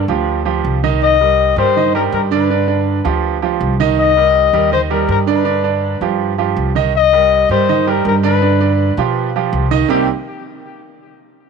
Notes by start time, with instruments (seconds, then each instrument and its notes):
0.08 upright bass D2, grand piano F3 F4 G4
0.45 grand piano F3 F4 G4
0.64 upright bass C2
0.83 grand piano D#3 D#4 D#5
1.03 flugelhorn D#5
1.21 grand piano G3 G4 A#4
1.56 upright bass G2, grand piano G3 G4 A#4, flugelhorn C5
1.77 grand piano D#3 D#4 D#5
1.95 grand piano G3 G4 A#4, flugelhorn A#4
2.12 upright bass G2, flugelhorn A#4
2.31 grand piano D3 D4 D5, flugelhorn B4
2.50 grand piano D3 D4 D5
2.67 grand piano D3 D4 D5
3.05 upright bass D2, grand piano F3 F4 G4
3.42 grand piano F3 F4 G4
3.60 upright bass C2
3.80 grand piano D#3 D#4 D#5
3.99 flugelhorn D#5
4.17 grand piano G3 G4 A#4
4.53 upright bass D#2, grand piano G3 G4 A#4
4.72 grand piano D#3 D#4 D#5, flugelhorn C5
4.90 grand piano G3 G4 A#4, flugelhorn A#4
5.08 upright bass G2, flugelhorn A#4
5.26 grand piano D3 D4 D5, flugelhorn B4
5.44 grand piano D3 D4 D5
5.63 grand piano D3 D4 D5
6.01 upright bass G2, grand piano F3 F4 G4
6.38 grand piano F3 F4 G4
6.56 upright bass C2
6.75 grand piano D#3 D#4 D#5
6.96 flugelhorn D#5
7.13 grand piano G3 G4 A#4
7.49 upright bass G2, grand piano G3 G4 A#4, flugelhorn C5
7.69 grand piano D#3 D#4 D#5
7.87 grand piano G3 G4 A#4, flugelhorn A#4
8.05 upright bass G2, flugelhorn A#4
8.23 grand piano D3 D4 D5, flugelhorn B4
8.42 grand piano D3 D4 D5
8.60 grand piano D3 D4 D5
8.97 upright bass B2, grand piano F3 F4 G4
9.36 grand piano F3 F4 G4
9.53 upright bass C2
9.71 grand piano D#3 D#4 D#5
9.88 upright bass C2, grand piano C3 G3 A#3 C4 D#4 G4, flugelhorn G4